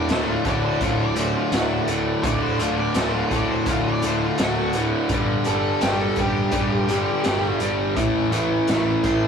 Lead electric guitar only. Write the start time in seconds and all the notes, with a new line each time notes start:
0.10 C5
0.30 F4
0.45 D5
0.65 C5
0.84 F4
1.01 D5
1.20 C5
1.37 F4
1.54 F#4
2.23 D5
2.42 C5
2.61 F4
2.78 D5
2.96 C5
3.14 F4
3.32 D5
3.50 C5
3.69 F4
3.87 D5
4.06 C5
4.24 F4
4.41 F#4
5.46 A4
5.82 G4
5.99 A4
6.20 G4
9.05 C6